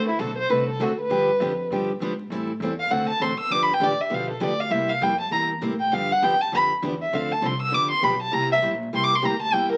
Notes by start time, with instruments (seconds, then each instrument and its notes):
Already playing: upright bass D2
0.08 violin E4
0.19 upright bass B1, steel-string acoustic guitar D3 A3 C4 F#4 A4, violin A4
0.38 violin C5
0.49 upright bass C2, steel-string acoustic guitar D3 A3 C4 F#4 A4, violin B4
0.69 violin A4
0.80 upright bass D2, steel-string acoustic guitar D3 A3 C4 F#4 A4, violin F#4
1.00 violin B4
1.10 upright bass G2, steel-string acoustic guitar D3 F3 B3 D4 G4
1.40 upright bass F2, steel-string acoustic guitar D3 F3 B3 D4 G4
1.70 upright bass G2, steel-string acoustic guitar D3 F3 B3 D4 G4
2.00 upright bass G#2, steel-string acoustic guitar D3 F3 B3 D4 G4
2.30 upright bass A2, steel-string acoustic guitar E3 G3 C4 E4 A4
2.60 upright bass E2, steel-string acoustic guitar E3 G3 C4 E4 A4
2.80 violin F5
2.90 upright bass D2, steel-string acoustic guitar D3 A3 C4 F#4 A4, violin F#5
3.08 violin A5, muted upright bass stroke
3.20 upright bass A1, steel-string acoustic guitar D3 A3 C4 F#4 A4, violin C6
3.38 violin E6, muted upright bass stroke
3.50 upright bass G1, steel-string acoustic guitar D3 F3 B3 D4 G4, violin D6
3.63 violin B5
3.74 violin G5
3.80 upright bass A1, steel-string acoustic guitar D3 F3 B3 D4 G4, violin D5
3.98 violin E5, muted upright bass stroke
4.10 upright bass B1, steel-string acoustic guitar D3 F3 B3 D4 G4
4.15 violin F5
4.30 violin A4
4.40 upright bass D2, steel-string acoustic guitar D3 F3 B3 D4 G4, violin D5
4.61 violin F5
4.70 upright bass C2, steel-string acoustic guitar C3 G3 A#3 E4 G4, violin E5
4.89 violin F5
5.01 upright bass F2, steel-string acoustic guitar C3 G3 A#3 E4 G4, violin G5
5.20 violin A5
5.31 upright bass E2, steel-string acoustic guitar C3 G3 A#3 E4 G4, violin A#5
5.61 upright bass A2, steel-string acoustic guitar C3 G3 A#3 E4 G4
5.80 violin G5
5.92 upright bass G2, steel-string acoustic guitar D3 F3 B3 D4 G4, violin F5
6.12 violin F#5
6.22 upright bass F#2, steel-string acoustic guitar D3 F3 B3 D4 G4, violin G5
6.41 violin A5
6.52 upright bass F2, steel-string acoustic guitar D3 F3 B3 D4 G4, violin B5
6.82 upright bass E2, steel-string acoustic guitar D3 F3 B3 D4 G4
7.02 violin E5
7.13 upright bass D2, steel-string acoustic guitar D3 F3 C4 D4 A4, violin F5
7.32 violin A5
7.41 upright bass C2, steel-string acoustic guitar D3 F3 C4 D4 A4
7.46 violin C6
7.62 violin E6
7.72 upright bass G1, steel-string acoustic guitar D3 F3 B3 D4 G4, violin D6
7.91 violin C6
8.01 upright bass B1, steel-string acoustic guitar D3 F3 B3 D4 G4, violin B5
8.22 violin A5
8.32 upright bass C2, steel-string acoustic guitar C3 G3 A#3 E4 G4, violin A#5
8.52 violin E5
8.62 upright bass A#1, steel-string acoustic guitar C3 G3 A#3 E4 G4
8.93 upright bass C2, steel-string acoustic guitar C3 G3 A#3 E4 G4, violin C6
9.04 violin D6
9.15 violin C6
9.22 upright bass D2, steel-string acoustic guitar C3 G3 A#3 E4 G4, violin A#5
9.42 violin A5
9.52 upright bass E2, steel-string acoustic guitar C3 G3 A#3 E4 G4, violin G5
9.71 violin A#4, muted upright bass stroke